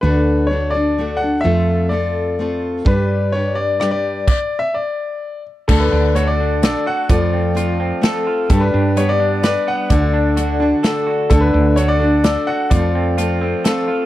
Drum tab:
CC |------|------|------|x-----|
HH |------|------|------|------|
SD |------|------|----r-|------|
BD |------|------|o-----|o-----|

CC |x-----|------|------|------|
HH |--x-x-|x-x-x-|x-x-x-|x-x-x-|
SD |----o-|----o-|----o-|----o-|
BD |o-----|o-----|o-----|o-----|

CC |------|------|
HH |x-x-x-|x-x-x-|
SD |----o-|----o-|
BD |o-----|o-----|